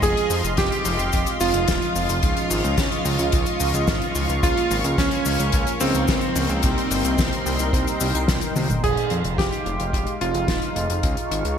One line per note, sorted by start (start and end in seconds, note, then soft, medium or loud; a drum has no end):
0.00 0.15 F1 loud
0.00 0.41 F3 medium
0.00 0.41 G#3 medium
0.00 0.41 C4 medium
0.00 0.41 D#4 medium
0.00 6.59 F4 medium
0.00 0.41 F4 medium
0.00 0.33 G#4 loud
0.00 2.19 D#5 medium
0.00 6.59 F5 medium
0.00 2.19 C6 medium
0.00 kick loud
0.00 closed hi-hat medium
0.00 cabasa medium
0.17 closed hi-hat soft
0.30 0.43 F2 medium
0.30 open hi-hat medium
0.30 cabasa medium
0.44 0.56 F1 medium
0.44 1.37 F3 medium
0.44 1.37 G#3 medium
0.44 1.37 C4 medium
0.44 1.37 D#4 medium
0.44 1.37 F4 medium
0.44 closed hi-hat medium
0.44 cabasa soft
0.57 0.70 F1 loud
0.57 1.29 G4 loud
0.57 1.29 G4 medium
0.57 kick loud
0.57 snare loud
0.57 closed hi-hat medium
0.57 cabasa medium
0.72 closed hi-hat medium
0.85 0.98 F1 loud
0.85 open hi-hat medium
0.85 cabasa medium
0.99 1.11 F1 medium
0.99 closed hi-hat medium
0.99 cabasa medium
1.13 1.26 F1 loud
1.13 kick loud
1.13 closed hi-hat loud
1.13 cabasa medium
1.26 closed hi-hat medium
1.26 cabasa soft
1.40 1.53 F1 medium
1.40 2.20 F3 medium
1.40 2.20 G#3 medium
1.40 2.20 C4 medium
1.40 2.20 D#4 medium
1.40 2.20 F4 loud
1.40 4.32 F4 loud
1.40 open hi-hat medium
1.40 cabasa medium
1.54 1.66 F1 medium
1.54 closed hi-hat medium
1.54 cabasa soft
1.68 1.80 D#1 loud
1.68 kick loud
1.68 snare loud
1.68 closed hi-hat loud
1.68 cabasa medium
1.82 closed hi-hat medium
1.95 2.08 F1 medium
1.95 open hi-hat medium
1.95 cabasa medium
2.09 2.21 F1 medium
2.09 closed hi-hat medium
2.09 cabasa soft
2.23 2.35 C#2 loud
2.23 2.61 F3 loud
2.23 2.61 G#3 medium
2.23 2.61 C#4 medium
2.23 2.61 D#4 medium
2.23 2.61 F4 loud
2.23 4.41 D#5 medium
2.23 6.59 C#6 medium
2.23 kick loud
2.23 closed hi-hat medium
2.23 cabasa medium
2.37 closed hi-hat medium
2.50 2.63 G#1 medium
2.50 open hi-hat medium
2.50 cabasa medium
2.64 2.76 C#2 medium
2.64 4.40 F3 medium
2.64 4.40 G#3 medium
2.64 4.40 C#4 medium
2.64 4.40 D#4 medium
2.64 4.40 F4 medium
2.64 closed hi-hat medium
2.64 cabasa soft
2.78 2.90 C#2 loud
2.78 kick loud
2.78 snare loud
2.78 closed hi-hat loud
2.78 cabasa medium
2.92 closed hi-hat medium
3.05 3.18 C#2 loud
3.05 open hi-hat medium
3.05 cabasa medium
3.19 3.31 C#2 medium
3.19 closed hi-hat medium
3.19 cabasa medium
3.32 3.45 C#2 loud
3.32 kick loud
3.32 closed hi-hat loud
3.32 cabasa medium
3.46 closed hi-hat medium
3.46 cabasa soft
3.60 3.73 C#2 medium
3.60 open hi-hat medium
3.60 cabasa medium
3.74 3.87 C#2 medium
3.74 closed hi-hat medium
3.74 cabasa medium
3.88 4.00 G#1 loud
3.88 kick loud
3.88 snare loud
3.88 closed hi-hat loud
3.88 cabasa medium
4.02 closed hi-hat medium
4.15 4.28 C#2 medium
4.15 open hi-hat medium
4.15 cabasa medium
4.29 4.42 C#2 medium
4.29 closed hi-hat medium
4.29 cabasa medium
4.43 4.55 C#2 loud
4.43 4.81 F3 medium
4.43 4.81 G#3 medium
4.43 4.81 A#3 medium
4.43 4.81 C#4 medium
4.43 4.73 F4 loud
4.43 4.81 F4 medium
4.43 4.73 F4 loud
4.43 6.61 A#4 medium
4.43 kick loud
4.43 closed hi-hat loud
4.43 cabasa medium
4.57 closed hi-hat medium
4.71 4.83 G#1 medium
4.71 open hi-hat medium
4.71 cabasa medium
4.84 4.97 C#2 medium
4.84 5.77 F3 medium
4.84 5.77 G#3 medium
4.84 5.77 A#3 medium
4.84 5.77 C#4 medium
4.84 5.77 F4 medium
4.84 closed hi-hat medium
4.84 cabasa soft
4.98 5.10 C#2 loud
4.98 5.70 C#4 loud
4.98 kick loud
4.98 snare loud
4.98 closed hi-hat loud
4.98 cabasa medium
5.11 closed hi-hat medium
5.25 5.38 C#2 loud
5.25 open hi-hat medium
5.25 cabasa medium
5.39 5.52 C#2 medium
5.39 closed hi-hat medium
5.39 cabasa medium
5.52 5.66 C#2 loud
5.52 kick loud
5.52 closed hi-hat loud
5.52 cabasa medium
5.67 closed hi-hat medium
5.67 cabasa soft
5.80 5.93 C#2 medium
5.80 6.60 C#3 medium
5.80 6.60 F3 medium
5.80 6.60 G#3 medium
5.80 6.60 A#3 medium
5.80 8.72 C4 loud
5.80 6.60 D#4 loud
5.80 open hi-hat loud
5.80 cabasa medium
5.94 6.07 C#2 medium
5.94 closed hi-hat medium
5.94 cabasa soft
6.08 6.21 C#2 loud
6.08 kick loud
6.08 snare loud
6.08 closed hi-hat loud
6.08 cabasa medium
6.21 closed hi-hat medium
6.36 6.48 C#2 medium
6.36 open hi-hat medium
6.36 cabasa medium
6.49 6.62 C#2 medium
6.49 closed hi-hat medium
6.49 cabasa soft
6.63 6.76 C2 loud
6.63 7.01 C3 loud
6.63 7.01 G3 medium
6.63 7.01 A#3 medium
6.63 7.01 C4 medium
6.63 7.01 D#4 medium
6.63 8.81 D#4 medium
6.63 7.01 G4 loud
6.63 8.81 A#4 medium
6.63 8.81 G5 medium
6.63 8.81 C6 medium
6.63 kick loud
6.63 closed hi-hat loud
6.63 cabasa medium
6.78 closed hi-hat medium
6.91 7.03 G1 medium
6.91 open hi-hat loud
6.91 cabasa medium
7.05 7.17 C2 medium
7.05 7.98 C3 medium
7.05 7.98 G3 medium
7.05 7.98 A#3 medium
7.05 7.98 C4 medium
7.05 7.98 D#4 medium
7.05 7.98 G4 loud
7.05 closed hi-hat medium
7.05 cabasa medium
7.18 7.31 C2 loud
7.18 kick loud
7.18 snare loud
7.18 closed hi-hat loud
7.18 cabasa medium
7.33 closed hi-hat medium
7.46 7.58 C2 medium
7.46 open hi-hat medium
7.46 cabasa medium
7.59 7.72 C2 medium
7.59 closed hi-hat medium
7.59 cabasa soft
7.73 7.86 C2 loud
7.73 kick loud
7.73 closed hi-hat loud
7.73 cabasa medium
7.87 closed hi-hat medium
7.87 cabasa soft
8.01 8.13 C2 medium
8.01 8.08 C3 medium
8.01 8.08 G3 medium
8.01 8.08 A#3 medium
8.01 8.08 C4 medium
8.01 8.08 D#4 medium
8.01 8.08 G4 loud
8.01 open hi-hat loud
8.01 cabasa medium
8.15 8.27 C2 medium
8.15 closed hi-hat medium
8.15 cabasa medium
8.28 8.41 C2 loud
8.28 kick loud
8.28 snare loud
8.28 closed hi-hat loud
8.28 cabasa medium
8.41 closed hi-hat medium
8.41 cabasa soft
8.56 8.68 C2 medium
8.56 8.63 G3 medium
8.56 8.63 A#3 medium
8.56 8.63 C4 medium
8.56 8.63 D#4 medium
8.56 8.63 F4 medium
8.56 open hi-hat medium
8.56 high tom medium
8.56 cabasa medium
8.70 8.82 G1 medium
8.70 closed hi-hat medium
8.70 mid tom medium
8.70 cabasa soft
8.83 8.96 F1 loud
8.83 11.58 G#3 medium
8.83 11.58 D#4 medium
8.83 9.14 G#4 medium
8.83 11.58 F5 medium
8.83 11.02 C6 medium
8.83 kick loud
8.83 closed hi-hat loud
8.83 crash medium
8.97 closed hi-hat medium
9.10 9.23 F2 medium
9.10 closed hi-hat medium
9.24 9.37 F1 medium
9.24 closed hi-hat soft
9.38 9.51 F1 loud
9.38 10.10 G4 medium
9.38 kick loud
9.38 snare loud
9.38 closed hi-hat loud
9.52 closed hi-hat medium
9.66 9.78 F1 medium
9.66 closed hi-hat soft
9.80 9.92 F1 medium
9.80 closed hi-hat medium
9.93 10.06 F1 loud
9.93 kick loud
9.93 closed hi-hat loud
10.07 closed hi-hat soft
10.21 10.33 F1 medium
10.21 11.58 F4 medium
10.21 closed hi-hat medium
10.34 10.47 F1 medium
10.34 closed hi-hat medium
10.48 10.61 D#1 loud
10.48 kick loud
10.48 snare loud
10.48 closed hi-hat medium
10.62 closed hi-hat medium
10.76 10.88 F1 medium
10.76 closed hi-hat medium
10.90 11.02 F1 medium
10.90 closed hi-hat medium
11.03 11.16 C#2 loud
11.03 11.58 C#6 medium
11.03 kick loud
11.03 closed hi-hat loud
11.17 closed hi-hat medium
11.31 11.43 G#1 medium
11.31 closed hi-hat medium
11.45 11.57 C#2 medium
11.45 closed hi-hat medium